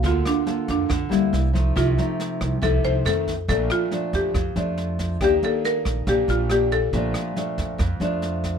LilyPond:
<<
  \new Staff \with { instrumentName = "Marimba" } { \time 4/4 \key bes \major \tempo 4 = 139 f'8 d'4 d'2 r8 | f'2 a'8 c''8 a'4 | a'8 f'4 g'2 r8 | g'8 a'8 bes'4 g'8 f'8 g'8 a'8~ |
a'4. r2 r8 | }
  \new Staff \with { instrumentName = "Nylon-string guitar" } { \time 4/4 \key bes \major << { <bes f' a'>4 <bes f' a'>4 r8 <g bes e'>4 <f a ees'>8~ | <f a ees'>8 <f a ees'>4. <f a ees'>4 <ees a c'>8 r8 | <f a d'>4 <f a d'>4 r8 <f a d'>4. | <bes d' g'>8 <bes d' g'>4. <bes d' g'>4 <bes d' g'>8 r8 |
<f a d'>4 <f a d'>4 r8 <f a d'>4. | } \\ { d2 d4 r4 | c2 c4 r4 | bes,2 f,2 | ees2 bes,2 |
bes,2 f,2 | } >> }
  \new Staff \with { instrumentName = "Upright bass" } { \clef bass \time 4/4 \key bes \major d,8 r4 f,8 f,8 d,8 c,4 | c,8 r4 c,8 c,8 c,8 f,4 | bes,,8 r4 f,8 f,8 f,4. | ees,8 r4 bes,,8 bes,,8 bes,,4. |
bes,,8 r4 f,8 f,8 f,4. | }
  \new DrumStaff \with { instrumentName = "Drums" } \drummode { \time 4/4 <bd sn>8 <ss sn>8 sn8 <bd sn>8 <bd ss sn>8 sn8 sn8 <bd sn>8 | <bd ss sn>8 sn8 sn8 <bd ss sn>8 <bd sn>8 sn8 <ss sn>8 <bd sn>8 | <bd sn>8 <ss sn>8 sn8 <bd sn>8 <bd ss sn>8 sn8 sn8 <bd sn>8 | <bd ss sn>8 sn8 sn8 <bd ss sn>8 <bd sn>8 sn8 <ss sn>8 <bd sn>8 |
<bd sn>8 <ss sn>8 sn8 <bd sn>8 <bd ss sn>8 sn8 sn8 <bd sn>8 | }
>>